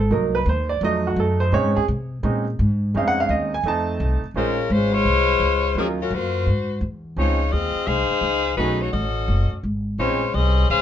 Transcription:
Already playing: upright bass G#1, grand piano A4
0.11 upright bass C2, grand piano F#3 A#3 D#4 A#4
0.35 grand piano B4
0.46 upright bass D#2, grand piano C5
0.69 grand piano D5
0.81 upright bass F2, grand piano F#3 A3 D#4 D#5
1.07 grand piano F#4
1.16 upright bass F#2, grand piano A4
1.40 grand piano C5
1.52 upright bass A#2, grand piano G#3 C4 C#4 D#4 C#5
1.64 upright bass G#2
1.76 upright bass F2, grand piano G#4
1.88 upright bass C3
2.23 upright bass A#2, grand piano G#3 C4 C#4 D#4
2.59 upright bass G#2
2.94 upright bass F2, grand piano G#3 C4 C#4 D#4 F5
3.08 grand piano F#5
3.20 grand piano F5
3.29 upright bass D#2, grand piano D#5
3.54 grand piano G#5
3.63 upright bass F2, grand piano A3 C4 D#4
3.68 grand piano A5
4.00 upright bass C2
4.22 muted upright bass stroke
4.34 upright bass A#1, grand piano G#3 C#4 D#4 F4 C5, saxophone section G#3 C#4 F4 A#4
4.70 upright bass G#1, saxophone section G#3 C#4 F4 C5
4.93 saxophone section G#3 F4 C5 C#5
5.05 upright bass C2
5.39 upright bass C#2
5.75 upright bass D#2, saxophone section F3 A#3 C#4 G#4, grand piano F#3 C#4 D#4 F4 A#4
6.02 saxophone section F#3 C#4 F4 A#4
6.11 upright bass F#2
6.15 saxophone section A#3 F4 F#4 C5
6.47 upright bass G#2
6.81 upright bass E2
7.16 upright bass C#2, grand piano F3 C4 C#4 D#4 G#4, saxophone section G#3 D#4 F4 C#5
7.52 upright bass D#2, saxophone section C4 F4 G#4 D#5
7.75 muted upright bass stroke
7.87 upright bass C2, saxophone section D#4 G#4 C5 F5
8.10 muted upright bass stroke
8.21 upright bass C#2
8.56 upright bass B1, grand piano F#3 A3 C#4 D#4 G#4, saxophone section A3 D#4 F#4 B4
8.79 saxophone section A3 D#4 F#4 C#5
8.92 upright bass A1, saxophone section C#4 F#4 A4 D#5
9.28 upright bass F#1
9.51 muted upright bass stroke
9.63 upright bass G#1
9.98 upright bass A#1, grand piano F3 C4 C#4 D#4 G#4, saxophone section G#3 F4 C5 C#5
10.34 upright bass C2, saxophone section C#4 G#4 C5 D#5
10.70 upright bass C#2, saxophone section C#4 G#4 C5 F5

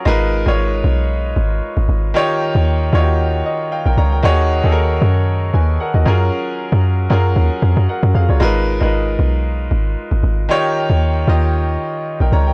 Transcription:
0.05 log drum bass G#1, grand piano G#3 D#4 F4 A#4 B4
0.46 log drum bass G#1, grand piano G#3 D#4 F4 A#4 C#5
0.84 log drum bass B1
1.36 log drum bass G#1
1.77 log drum bass G#1
1.89 log drum bass G#1
2.14 grand piano D#3 D#4 F4 G4 C#5
2.55 log drum bass D#2
2.92 log drum bass D#2, grand piano D#3 D#4 F4 F#4 C#5
3.00 grand piano G4
3.46 grand piano D#5
3.72 grand piano F5 G5
3.86 log drum bass A#1, grand piano A#4 G5
3.97 log drum bass C#2, grand piano C#5 A#5
4.12 grand piano A#4 G5
4.22 log drum bass D#2, grand piano D#3 D#4 F#4 G#4 C#5
4.63 log drum bass D#2, grand piano D#3 D#4 F#4 G#4 A4
4.72 grand piano A#4
5.02 log drum bass F#2
5.54 log drum bass D#2, grand piano B4 G#5
5.80 grand piano A#4 F#5
5.94 log drum bass D#2, grand piano F#4 D#5
6.05 log drum bass F#2, grand piano F#3 C#4 F4 G#4 A#4
6.72 log drum bass F#2
7.10 log drum bass F#2, grand piano F#3 C#4 F4 G#4 A#4
7.36 log drum bass D#2
7.62 log drum bass F2
7.77 log drum bass F#2
7.89 grand piano A#4 F#5
8.03 log drum bass F#2
8.15 log drum bass F2, grand piano G#4 F5
8.29 log drum bass C#2, grand piano F4 C#5
8.40 log drum bass G#1, grand piano G#3 D#4 F4 A#4 B4
8.81 log drum bass G#1, grand piano G#3 D#4 F4 A#4 B4
9.19 log drum bass B1
9.71 log drum bass G#1
10.12 log drum bass G#1
10.23 log drum bass G#1
10.49 grand piano D#3 D#4 F4 G4 C#5
10.90 log drum bass D#2
11.27 log drum bass D#2, grand piano D#3 D#4 F4 G4 D#5
12.20 log drum bass A#1, grand piano A#4 G5
12.32 log drum bass C#2, grand piano C#5 A#5
12.47 grand piano A#4 G5

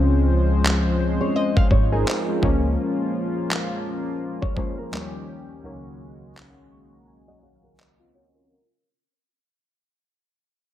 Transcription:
Already playing: fingered electric bass C#2, synth keys F3 G#3 C4 C#4, analog synth pad F3 G#3 C5
0.66 clap
1.21 nylon-string guitar C#5
1.36 nylon-string guitar D#5
1.56 nylon-string guitar F5, kick
1.71 fingered electric bass G#1, nylon-string guitar C#5, kick
1.92 synth keys D#4 G#4, nylon-string guitar A#4
2.07 synth keys C4 F4, clap
2.28 synth keys G#3 C#4
2.41 fingered electric bass C#2, synth keys F3 G#3 A#3 C#4, analog synth pad F3 A#3 F4, kick
3.51 clap
4.42 nylon-string guitar C#5, kick
4.56 synth keys F3 G#3 A#3 C#4, nylon-string guitar C5, kick
4.78 nylon-string guitar A#4
4.92 synth keys D#2 F3 G3 A#3 C4, analog synth pad D#3 C#4 G4, clap
5.01 synth keys C#4
5.63 synth keys C#2 D#3 F#3 A#3 C#4, analog synth pad C#3 G#3 F#4
6.37 clap
6.71 synth keys C#6
6.93 synth keys A#5
7.07 synth keys G#5
7.28 nylon-string guitar D#5, synth keys F#5
7.43 nylon-string guitar C#5, synth keys F5
7.63 nylon-string guitar A#4
7.79 synth keys D#5, clap
7.99 synth keys C4 F4
8.15 synth keys C#4 F#4 C#5
8.35 synth keys F4 A#4

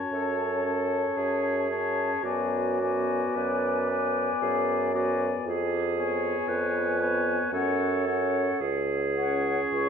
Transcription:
Already playing: french horn C#4, oboe C#5, flute A5
0.11 bassoon F#2, clarinet A4
0.65 french horn C#4, oboe C#5, flute A5
1.17 bassoon F#2, clarinet G#4
1.70 french horn C#4, oboe C#5, flute A5
2.23 bassoon F#2, french horn B3, clarinet F#4, oboe D5, flute G#5
2.81 french horn B3, oboe D5, flute G#5
3.36 bassoon F#2, clarinet B4
3.90 french horn B3, oboe D5, flute G#5
4.41 bassoon F#2, clarinet G#4
4.95 french horn B3, clarinet F#4, oboe D5, flute G#5
5.45 bassoon F2, clarinet G#4
5.97 french horn B3, oboe C#5, flute G#5
6.48 bassoon F2, clarinet B4
7.00 french horn B3, oboe C#5, flute G#5
7.52 bassoon F#2, french horn C#4, clarinet A4, oboe C#5, flute F#5
8.07 french horn C#4, oboe C#5, flute F#5
8.61 bassoon C#2, clarinet G#4
9.17 french horn C#4, oboe C#5, flute F#5
9.73 bassoon C#2, flute C#6

